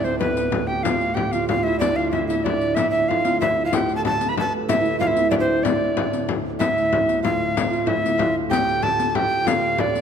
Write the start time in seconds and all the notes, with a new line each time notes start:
Already playing: D2 A2 D4 E4
0.04 C4 C5, riq
0.19 B3 B4, frame drum
0.37 riq
0.52 frame drum
0.67 G4 G5
0.83 F4 F5, riq, frame drum
1.01 riq
1.14 G4 G5, frame drum
1.32 F4 F5, riq
1.48 F4 F5, frame drum
1.63 E4 E5
1.80 D4 D5, riq, frame drum
1.96 F4 F5
2.11 E4 E5, frame drum
2.27 E4 E5, riq
2.44 D4 D5, frame drum
2.61 riq
2.75 D2 E4 E5, riq, frame drum
2.79 A2
2.90 E5
2.94 riq
3.08 F4 F5, frame drum
3.25 F4, riq
3.41 E4 E5, frame drum
3.65 F4 F5
3.73 G4 G5, riq, frame drum
3.89 riq
3.95 A4 A5
4.05 A4 A5, frame drum
4.21 riq
4.29 B4 B5
4.37 A4 A5, frame drum
4.68 E4 E5, riq, frame drum
4.81 E4
4.85 riq
4.99 F4 F5, frame drum
5.07 E4 E5
5.17 riq
5.31 D4 D5, frame drum
5.39 C4 C5
5.63 D4 D5, riq, frame drum
5.97 frame drum
6.13 riq
6.29 frame drum
6.45 frame drum
6.59 D2 A2 E4 E5, riq, frame drum
6.78 riq
6.93 frame drum
7.09 riq
7.23 F4 F5, frame drum
7.57 riq, frame drum
7.70 F4, riq
7.86 E4 E5, frame drum
8.06 riq
8.18 F4, frame drum
8.49 G4 G5, riq, frame drum
8.69 riq
8.83 A4 A5, frame drum
9.00 riq
9.10 A5
9.15 G4 G5, frame drum
9.44 F4 F5, riq, frame drum
9.63 frame drum
9.78 D4 D5, frame drum
9.95 riq